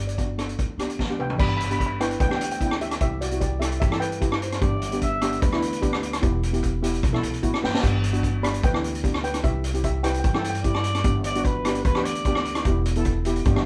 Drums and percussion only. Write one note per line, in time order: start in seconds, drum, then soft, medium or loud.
0.09 closed hi-hat medium
0.18 kick medium
0.18 closed hi-hat medium
0.39 cross-stick medium
0.39 closed hi-hat medium
0.49 closed hi-hat medium
0.59 kick medium
0.59 closed hi-hat medium
0.79 cross-stick medium
0.79 closed hi-hat medium
0.90 closed hi-hat medium
0.99 kick medium
0.99 snare medium
1.20 mid tom medium
1.30 floor tom medium
1.39 kick loud
1.39 crash loud
1.60 closed hi-hat medium
1.71 closed hi-hat medium
1.80 kick medium
1.80 closed hi-hat medium
2.01 cross-stick medium
2.01 closed hi-hat medium
2.11 closed hi-hat medium
2.20 kick loud
2.20 closed hi-hat medium
2.31 cross-stick medium
2.41 closed hi-hat medium
2.51 closed hi-hat medium
2.61 kick medium
2.61 closed hi-hat medium
2.71 cross-stick medium
2.81 closed hi-hat medium
2.91 cross-stick medium
2.91 closed hi-hat medium
3.01 kick loud
3.01 closed hi-hat medium
3.22 closed hi-hat medium
3.31 closed hi-hat medium
3.41 kick medium
3.41 closed hi-hat medium
3.62 cross-stick medium
3.62 closed hi-hat medium
3.72 closed hi-hat medium
3.82 kick loud
3.82 closed hi-hat medium
3.92 cross-stick medium
4.02 closed hi-hat medium
4.12 closed hi-hat medium
4.22 kick medium
4.22 closed hi-hat medium
4.32 cross-stick medium
4.42 closed hi-hat medium
4.52 cross-stick medium
4.52 closed hi-hat medium
4.61 kick loud
4.61 closed hi-hat medium
4.82 closed hi-hat medium
4.92 closed hi-hat medium
5.02 kick medium
5.02 closed hi-hat medium
5.21 cross-stick medium
5.21 closed hi-hat medium
5.33 closed hi-hat medium
5.42 kick loud
5.42 closed hi-hat medium
5.52 cross-stick medium
5.62 closed hi-hat medium
5.73 closed hi-hat medium
5.83 kick medium
5.83 closed hi-hat medium
5.93 cross-stick medium
6.03 closed hi-hat medium
6.13 cross-stick medium
6.13 closed hi-hat medium
6.23 kick loud
6.23 closed hi-hat medium
6.43 closed hi-hat medium
6.54 closed hi-hat medium
6.63 kick medium
6.63 closed hi-hat medium
6.84 closed hi-hat medium
6.94 closed hi-hat medium
7.03 kick loud
7.03 closed hi-hat medium
7.14 cross-stick medium
7.23 closed hi-hat medium
7.34 closed hi-hat medium
7.43 kick medium
7.43 closed hi-hat medium
7.54 cross-stick medium
7.64 snare medium
7.74 snare medium
7.83 kick loud
7.83 closed hi-hat medium
7.83 crash medium
8.04 closed hi-hat medium
8.14 closed hi-hat medium
8.23 kick medium
8.23 closed hi-hat medium
8.44 cross-stick medium
8.44 closed hi-hat medium
8.54 closed hi-hat medium
8.63 kick loud
8.63 closed hi-hat medium
8.74 cross-stick medium
8.84 closed hi-hat medium
8.95 closed hi-hat medium
9.04 kick medium
9.04 closed hi-hat medium
9.14 cross-stick medium
9.24 closed hi-hat medium
9.34 cross-stick medium
9.34 closed hi-hat medium
9.44 kick loud
9.44 closed hi-hat medium
9.64 closed hi-hat medium
9.74 closed hi-hat medium
9.84 kick medium
9.84 closed hi-hat medium
10.04 cross-stick medium
10.04 closed hi-hat medium
10.14 closed hi-hat medium
10.24 kick loud
10.24 closed hi-hat medium
10.34 cross-stick medium
10.44 closed hi-hat medium
10.55 closed hi-hat medium
10.64 kick medium
10.64 closed hi-hat medium
10.74 cross-stick loud
10.84 closed hi-hat medium
10.95 cross-stick medium
10.95 closed hi-hat medium
11.04 kick loud
11.04 closed hi-hat medium
11.24 closed hi-hat medium
11.35 closed hi-hat medium
11.45 kick loud
11.45 closed hi-hat medium
11.65 cross-stick medium
11.65 closed hi-hat medium
11.75 closed hi-hat medium
11.85 kick loud
11.85 closed hi-hat medium
11.95 cross-stick medium
12.05 closed hi-hat medium
12.15 closed hi-hat medium
12.25 kick loud
12.25 closed hi-hat medium
12.35 cross-stick medium
12.45 closed hi-hat medium
12.55 cross-stick medium
12.55 closed hi-hat medium
12.65 kick loud
12.65 closed hi-hat medium
12.85 closed hi-hat medium
12.96 closed hi-hat medium
13.05 kick medium
13.05 closed hi-hat medium
13.25 closed hi-hat medium
13.36 closed hi-hat medium
13.45 kick loud
13.45 closed hi-hat medium
13.56 cross-stick medium